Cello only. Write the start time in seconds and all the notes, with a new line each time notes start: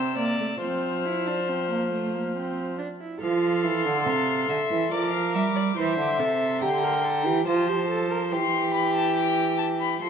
Already playing: C3
0.61 F3
3.21 F3
3.64 E3
3.85 D3
4.06 C3
4.49 D3
4.70 E3
4.91 F3
5.35 G3
5.77 E3
5.98 D3
6.19 C3
6.61 D3
7.26 E3
7.46 F3
8.31 E3
10.02 F3